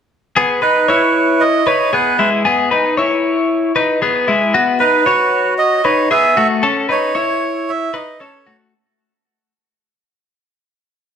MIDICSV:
0, 0, Header, 1, 3, 480
1, 0, Start_track
1, 0, Key_signature, 4, "minor"
1, 0, Tempo, 522648
1, 334, Time_signature, 4, 2, 24, 8
1, 10245, End_track
2, 0, Start_track
2, 0, Title_t, "Melodica"
2, 0, Program_c, 0, 22
2, 570, Note_on_c, 0, 71, 75
2, 1289, Note_on_c, 0, 75, 106
2, 1311, Note_off_c, 0, 71, 0
2, 1528, Note_on_c, 0, 73, 92
2, 1537, Note_off_c, 0, 75, 0
2, 1775, Note_on_c, 0, 71, 74
2, 1776, Note_off_c, 0, 73, 0
2, 2107, Note_off_c, 0, 71, 0
2, 4405, Note_on_c, 0, 71, 79
2, 5090, Note_off_c, 0, 71, 0
2, 5127, Note_on_c, 0, 75, 108
2, 5368, Note_on_c, 0, 73, 84
2, 5374, Note_off_c, 0, 75, 0
2, 5591, Note_off_c, 0, 73, 0
2, 5609, Note_on_c, 0, 76, 97
2, 5944, Note_off_c, 0, 76, 0
2, 6352, Note_on_c, 0, 73, 85
2, 7063, Note_on_c, 0, 76, 103
2, 7083, Note_off_c, 0, 73, 0
2, 7300, Note_on_c, 0, 75, 83
2, 7304, Note_off_c, 0, 76, 0
2, 7530, Note_on_c, 0, 73, 72
2, 7543, Note_off_c, 0, 75, 0
2, 7866, Note_off_c, 0, 73, 0
2, 10245, End_track
3, 0, Start_track
3, 0, Title_t, "Clean electric guitar"
3, 0, Program_c, 1, 27
3, 336, Note_on_c, 1, 68, 102
3, 341, Note_on_c, 1, 59, 79
3, 565, Note_off_c, 1, 68, 0
3, 569, Note_on_c, 1, 71, 67
3, 573, Note_off_c, 1, 59, 0
3, 576, Note_on_c, 1, 63, 53
3, 808, Note_off_c, 1, 71, 0
3, 812, Note_on_c, 1, 73, 79
3, 814, Note_off_c, 1, 63, 0
3, 823, Note_on_c, 1, 64, 65
3, 1493, Note_off_c, 1, 73, 0
3, 1499, Note_off_c, 1, 64, 0
3, 1531, Note_on_c, 1, 71, 70
3, 1539, Note_on_c, 1, 63, 46
3, 1768, Note_off_c, 1, 71, 0
3, 1772, Note_on_c, 1, 68, 73
3, 1774, Note_off_c, 1, 63, 0
3, 1780, Note_on_c, 1, 59, 59
3, 2008, Note_off_c, 1, 68, 0
3, 2012, Note_on_c, 1, 64, 74
3, 2014, Note_off_c, 1, 59, 0
3, 2017, Note_on_c, 1, 56, 62
3, 2248, Note_off_c, 1, 64, 0
3, 2251, Note_on_c, 1, 68, 107
3, 2252, Note_off_c, 1, 56, 0
3, 2262, Note_on_c, 1, 59, 76
3, 2487, Note_off_c, 1, 68, 0
3, 2491, Note_on_c, 1, 71, 84
3, 2494, Note_off_c, 1, 59, 0
3, 2499, Note_on_c, 1, 63, 60
3, 2729, Note_off_c, 1, 71, 0
3, 2732, Note_on_c, 1, 73, 79
3, 2733, Note_off_c, 1, 63, 0
3, 2742, Note_on_c, 1, 64, 62
3, 3412, Note_off_c, 1, 73, 0
3, 3417, Note_off_c, 1, 64, 0
3, 3451, Note_on_c, 1, 71, 60
3, 3458, Note_on_c, 1, 63, 50
3, 3688, Note_off_c, 1, 71, 0
3, 3692, Note_off_c, 1, 63, 0
3, 3692, Note_on_c, 1, 68, 71
3, 3698, Note_on_c, 1, 59, 64
3, 3926, Note_off_c, 1, 68, 0
3, 3930, Note_on_c, 1, 64, 73
3, 3932, Note_off_c, 1, 59, 0
3, 3938, Note_on_c, 1, 56, 53
3, 4168, Note_off_c, 1, 64, 0
3, 4172, Note_off_c, 1, 56, 0
3, 4172, Note_on_c, 1, 66, 109
3, 4178, Note_on_c, 1, 59, 79
3, 4409, Note_off_c, 1, 66, 0
3, 4410, Note_on_c, 1, 71, 76
3, 4412, Note_off_c, 1, 59, 0
3, 4418, Note_on_c, 1, 63, 61
3, 4645, Note_off_c, 1, 71, 0
3, 4649, Note_on_c, 1, 73, 80
3, 4652, Note_off_c, 1, 63, 0
3, 4656, Note_on_c, 1, 66, 72
3, 5331, Note_off_c, 1, 73, 0
3, 5335, Note_off_c, 1, 66, 0
3, 5371, Note_on_c, 1, 71, 66
3, 5377, Note_on_c, 1, 63, 48
3, 5606, Note_off_c, 1, 71, 0
3, 5610, Note_on_c, 1, 68, 77
3, 5613, Note_off_c, 1, 63, 0
3, 5619, Note_on_c, 1, 59, 57
3, 5846, Note_off_c, 1, 59, 0
3, 5849, Note_off_c, 1, 68, 0
3, 5849, Note_on_c, 1, 66, 78
3, 5858, Note_on_c, 1, 57, 57
3, 6088, Note_on_c, 1, 69, 108
3, 6089, Note_off_c, 1, 66, 0
3, 6093, Note_off_c, 1, 57, 0
3, 6095, Note_on_c, 1, 61, 77
3, 6323, Note_off_c, 1, 69, 0
3, 6327, Note_on_c, 1, 71, 69
3, 6332, Note_off_c, 1, 61, 0
3, 6333, Note_on_c, 1, 63, 62
3, 6562, Note_off_c, 1, 71, 0
3, 6566, Note_on_c, 1, 73, 82
3, 6570, Note_on_c, 1, 64, 60
3, 6572, Note_off_c, 1, 63, 0
3, 7253, Note_off_c, 1, 73, 0
3, 7255, Note_off_c, 1, 64, 0
3, 7290, Note_on_c, 1, 71, 70
3, 7298, Note_on_c, 1, 63, 49
3, 7530, Note_off_c, 1, 71, 0
3, 7533, Note_on_c, 1, 69, 70
3, 7535, Note_off_c, 1, 63, 0
3, 7539, Note_on_c, 1, 61, 59
3, 7773, Note_off_c, 1, 69, 0
3, 7774, Note_on_c, 1, 66, 73
3, 7776, Note_off_c, 1, 61, 0
3, 7784, Note_on_c, 1, 57, 59
3, 8014, Note_off_c, 1, 66, 0
3, 8019, Note_off_c, 1, 57, 0
3, 10245, End_track
0, 0, End_of_file